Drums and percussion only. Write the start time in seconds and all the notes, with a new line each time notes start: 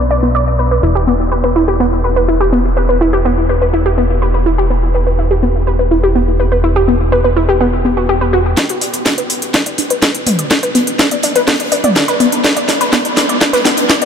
8.57 kick, snare, closed hi-hat
8.69 closed hi-hat
8.81 closed hi-hat, open hi-hat
8.93 closed hi-hat
9.05 kick, snare, closed hi-hat
9.18 closed hi-hat
9.30 closed hi-hat, open hi-hat
9.42 closed hi-hat
9.54 kick, snare, closed hi-hat
9.66 closed hi-hat
9.78 closed hi-hat, open hi-hat
9.90 closed hi-hat
10.02 kick, snare, closed hi-hat
10.15 closed hi-hat
10.26 closed hi-hat, open hi-hat, mid tom
10.39 closed hi-hat
10.50 kick, snare, closed hi-hat
10.63 closed hi-hat
10.75 snare, closed hi-hat, open hi-hat
10.87 closed hi-hat
10.99 kick, snare, closed hi-hat
11.11 closed hi-hat
11.23 closed hi-hat, open hi-hat
11.36 closed hi-hat
11.48 kick, snare, closed hi-hat, open hi-hat
11.60 closed hi-hat
11.72 closed hi-hat, open hi-hat
11.84 closed hi-hat, mid tom
11.96 kick, snare, closed hi-hat
12.08 snare, closed hi-hat
12.20 closed hi-hat, open hi-hat
12.32 closed hi-hat
12.44 kick, snare, closed hi-hat
12.57 closed hi-hat
12.69 snare, closed hi-hat, open hi-hat
12.81 closed hi-hat
12.93 kick, snare, closed hi-hat
13.05 closed hi-hat
13.17 snare, closed hi-hat, open hi-hat
13.29 closed hi-hat
13.41 kick, snare, closed hi-hat
13.53 snare, closed hi-hat
13.65 snare, open hi-hat
13.77 closed hi-hat
13.89 kick, snare, closed hi-hat
14.02 closed hi-hat